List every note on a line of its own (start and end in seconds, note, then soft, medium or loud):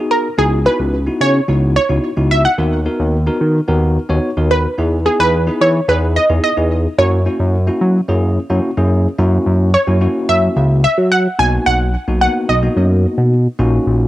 0.00 0.27 B3 medium
0.00 0.27 D#4 medium
0.00 0.27 F#4 medium
0.00 0.27 G#4 medium
0.11 0.39 A#4 medium
0.38 0.68 C#2 loud
0.38 0.58 B3 medium
0.38 0.58 D#4 medium
0.38 0.58 E4 medium
0.38 0.58 F#4 medium
0.38 0.67 G#4 loud
0.65 0.95 B3 medium
0.65 0.95 D#4 medium
0.65 0.96 E4 medium
0.65 0.96 F#4 medium
0.65 1.17 B4 loud
0.80 1.09 C#2 medium
1.07 1.37 B3 medium
1.07 1.37 D#4 medium
1.07 1.37 E4 medium
1.07 1.37 F#4 medium
1.21 1.41 C#3 medium
1.21 1.72 C#5 loud
1.48 1.78 C#2 medium
1.48 1.78 B3 medium
1.48 1.78 D#4 medium
1.48 1.78 E4 medium
1.48 1.78 F#4 medium
1.76 2.33 C#5 loud
1.89 1.99 C#2 medium
1.89 2.09 B3 medium
1.89 2.09 D#4 medium
1.89 2.09 E4 medium
1.89 2.10 F#4 medium
2.17 2.47 C#2 medium
2.17 2.47 B3 medium
2.17 2.47 D#4 medium
2.17 2.47 E4 medium
2.17 2.47 F#4 medium
2.31 2.45 E5 loud
2.45 2.96 F#5 loud
2.58 2.88 D#2 loud
2.58 2.78 B3 medium
2.58 2.78 D#4 medium
2.58 2.78 F#4 medium
2.58 2.78 A#4 medium
2.86 3.16 B3 medium
2.86 3.16 D#4 medium
2.86 3.16 F#4 medium
2.86 3.16 A#4 medium
3.00 3.29 D#2 medium
3.27 3.57 B3 medium
3.27 3.57 D#4 medium
3.27 3.57 F#4 medium
3.27 3.57 A#4 medium
3.41 3.61 D#3 medium
3.68 3.98 D#2 loud
3.68 3.98 B3 medium
3.68 3.98 D#4 medium
3.68 3.98 F#4 medium
3.68 3.98 A#4 medium
4.09 4.19 D#2 medium
4.09 4.29 B3 medium
4.09 4.29 D#4 medium
4.09 4.29 F#4 medium
4.09 4.30 C#5 loud
4.37 4.67 D#2 medium
4.37 4.67 B3 medium
4.37 4.67 D#4 medium
4.37 4.67 F#4 medium
4.37 4.67 A#4 medium
4.51 5.08 B4 loud
4.78 5.08 E2 loud
4.78 4.98 B3 medium
4.78 4.98 D#4 medium
4.78 4.98 E4 medium
4.78 4.98 G#4 medium
5.05 5.36 B3 medium
5.05 5.36 D#4 medium
5.05 5.36 E4 medium
5.05 5.20 G#4 medium
5.05 5.36 G#4 medium
5.20 5.49 E2 loud
5.20 5.58 B4 loud
5.47 5.77 B3 medium
5.47 5.77 D#4 medium
5.47 5.77 E4 medium
5.47 5.77 G#4 medium
5.61 5.81 E3 loud
5.61 5.90 C#5 loud
5.88 6.18 E2 loud
5.88 6.18 B3 medium
5.88 6.18 D#4 medium
5.88 6.18 E4 medium
5.88 6.19 G#4 medium
5.88 6.14 B4 loud
6.16 6.29 D#5 loud
6.29 6.40 E2 medium
6.29 6.50 B3 medium
6.29 6.50 D#4 medium
6.29 6.50 E4 medium
6.29 6.50 G#4 medium
6.44 6.95 D#5 loud
6.57 6.87 E2 medium
6.57 6.87 B3 medium
6.57 6.87 D#4 medium
6.57 6.87 E4 medium
6.57 6.87 G#4 medium
6.98 7.28 F#2 loud
6.98 7.18 A#3 medium
6.98 7.18 C#4 medium
6.98 7.19 E4 medium
6.98 7.19 F#4 medium
6.98 8.60 C#5 loud
7.26 7.56 A#3 medium
7.26 7.56 C#4 medium
7.26 7.56 E4 medium
7.26 7.56 F#4 medium
7.40 7.70 F#2 medium
7.67 7.97 A#3 medium
7.67 7.97 C#4 medium
7.67 7.97 E4 medium
7.67 7.97 F#4 medium
7.81 8.01 F#3 medium
8.08 8.38 F#2 medium
8.08 8.38 A#3 medium
8.08 8.39 C#4 medium
8.08 8.39 E4 medium
8.08 8.39 G#4 medium
8.50 8.60 F#2 medium
8.50 8.70 A#3 medium
8.50 8.70 C#4 medium
8.50 8.70 E4 medium
8.50 8.70 F#4 loud
8.77 9.07 F#2 medium
8.77 9.07 A#3 medium
8.77 9.07 C#4 medium
8.77 9.07 E4 medium
8.77 9.08 G#4 loud
9.18 9.39 F#2 loud
9.18 9.68 A#3 medium
9.18 9.68 C#4 medium
9.18 9.69 E4 medium
9.18 9.69 F#4 loud
9.46 9.76 F#2 loud
9.74 10.25 C#5 medium
9.87 10.07 F#2 medium
9.87 9.97 A#3 medium
9.87 9.97 C#4 medium
9.87 9.97 E4 medium
9.87 9.98 F#4 medium
10.01 10.81 A#3 medium
10.01 10.81 C#4 medium
10.01 10.81 E4 medium
10.01 10.81 F#4 medium
10.29 10.49 F#2 medium
10.29 10.83 E5 medium
10.56 10.86 C#2 loud
10.84 11.10 E5 loud
10.98 11.28 F#3 medium
11.12 11.40 F#5 loud
11.39 11.59 B1 loud
11.39 11.89 A#3 medium
11.39 11.89 B3 medium
11.39 11.89 D#4 medium
11.39 11.89 F#4 medium
11.39 11.65 G#5 loud
11.66 11.96 B1 loud
11.66 12.20 F#5 loud
12.08 12.28 B1 medium
12.08 12.18 A#3 medium
12.08 12.18 B3 medium
12.08 12.18 D#4 medium
12.08 12.18 F#4 medium
12.21 12.51 A#3 medium
12.21 12.51 B3 medium
12.21 12.51 D#4 medium
12.21 12.52 F#4 medium
12.21 12.34 F#5 loud
12.49 12.69 B1 loud
12.49 13.28 D#5 medium
12.62 13.32 A#3 medium
12.62 13.33 B3 medium
12.62 13.33 D#4 medium
12.62 13.33 F#4 medium
12.77 13.06 F#2 loud
13.18 13.48 B2 medium
13.59 13.79 A#1 loud
13.59 14.08 A#3 medium
13.59 14.08 C#4 medium
13.59 14.08 D#4 medium
13.59 14.08 F#4 loud
13.87 14.08 A#1 loud